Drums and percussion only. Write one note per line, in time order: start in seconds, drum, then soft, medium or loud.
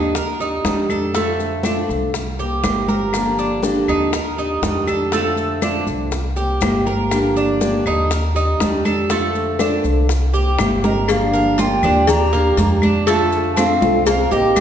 0.15 high bongo medium
0.15 high conga soft
0.15 maracas medium
0.40 high conga soft
0.40 maracas soft
0.65 high bongo medium
0.65 low bongo medium
0.65 high conga medium
0.65 maracas medium
0.89 high conga medium
0.89 claves medium
0.89 maracas soft
1.14 high bongo medium
1.14 high conga soft
1.14 maracas medium
1.39 high bongo soft
1.39 high conga soft
1.39 maracas soft
1.63 high bongo medium
1.63 high conga medium
1.63 claves medium
1.63 maracas medium
1.89 high bongo soft
1.89 high conga soft
1.89 maracas soft
2.13 high bongo medium
2.13 high conga soft
2.13 maracas medium
2.39 high bongo soft
2.39 high conga soft
2.39 maracas soft
2.64 high bongo medium
2.64 low bongo medium
2.64 high conga medium
2.64 claves medium
2.64 maracas medium
2.88 high conga medium
2.88 maracas soft
3.13 high bongo medium
3.13 high conga soft
3.13 claves medium
3.13 maracas medium
3.38 high conga soft
3.38 maracas soft
3.63 high bongo medium
3.63 high conga medium
3.63 maracas medium
3.88 high conga soft
3.88 claves medium
3.88 maracas soft
4.13 high bongo medium
4.13 high conga soft
4.13 maracas medium
4.38 high conga soft
4.38 maracas soft
4.63 high bongo medium
4.63 low bongo medium
4.63 high conga medium
4.63 maracas medium
4.87 high conga medium
4.87 claves medium
4.87 maracas soft
5.12 high bongo medium
5.12 high conga soft
5.12 maracas medium
5.37 high bongo soft
5.37 high conga soft
5.37 maracas soft
5.62 high bongo medium
5.62 high conga medium
5.62 claves medium
5.62 maracas medium
5.87 high bongo soft
5.87 high conga soft
5.87 maracas soft
6.12 high bongo medium
6.12 high conga soft
6.12 maracas medium
6.36 high bongo soft
6.36 high conga soft
6.36 maracas soft
6.61 high bongo medium
6.61 low bongo medium
6.61 high conga medium
6.61 claves medium
6.61 maracas medium
6.87 high conga medium
6.87 maracas soft
7.11 high bongo medium
7.11 high conga soft
7.11 claves medium
7.11 maracas medium
7.37 high conga soft
7.37 maracas soft
7.61 high bongo medium
7.61 high conga medium
7.61 maracas medium
7.86 high conga soft
7.86 claves medium
7.86 maracas soft
8.11 high bongo medium
8.11 high conga soft
8.11 maracas medium
8.36 high conga soft
8.36 maracas soft
8.60 high bongo medium
8.60 low bongo medium
8.60 high conga medium
8.60 maracas medium
8.85 high conga medium
8.85 claves medium
8.85 maracas soft
9.10 high bongo medium
9.10 high conga soft
9.10 maracas medium
9.35 high bongo soft
9.35 high conga soft
9.35 maracas soft
9.59 high bongo medium
9.59 high conga medium
9.59 claves medium
9.59 maracas medium
9.84 high bongo soft
9.84 high conga soft
9.84 maracas soft
10.09 high bongo medium
10.09 high conga soft
10.09 maracas medium
10.34 high bongo soft
10.34 high conga soft
10.34 maracas soft
10.59 high bongo medium
10.59 low bongo medium
10.59 high conga medium
10.59 claves medium
10.59 maracas medium
10.84 high bongo medium
10.84 high conga medium
10.84 maracas soft
11.08 cowbell loud
11.08 high conga soft
11.08 claves medium
11.08 maracas medium
11.34 high conga soft
11.34 maracas soft
11.58 cowbell medium
11.58 high conga medium
11.58 maracas medium
11.83 high conga soft
11.83 low conga medium
11.83 claves medium
11.83 maracas soft
12.07 cowbell loud
12.07 high conga soft
12.07 low conga medium
12.07 maracas medium
12.34 high conga soft
12.34 maracas soft
12.57 cowbell medium
12.57 high conga medium
12.57 maracas medium
12.82 high conga medium
12.82 claves medium
12.82 maracas soft
13.07 cowbell loud
13.07 high conga soft
13.07 maracas medium
13.32 high conga soft
13.32 maracas soft
13.57 cowbell medium
13.57 high conga medium
13.57 claves medium
13.57 maracas medium
13.82 high conga medium
13.82 maracas soft
14.07 cowbell loud
14.07 high conga soft
14.07 maracas medium
14.32 high conga soft
14.32 maracas soft
14.56 cowbell medium
14.56 high conga medium
14.56 claves medium
14.56 maracas medium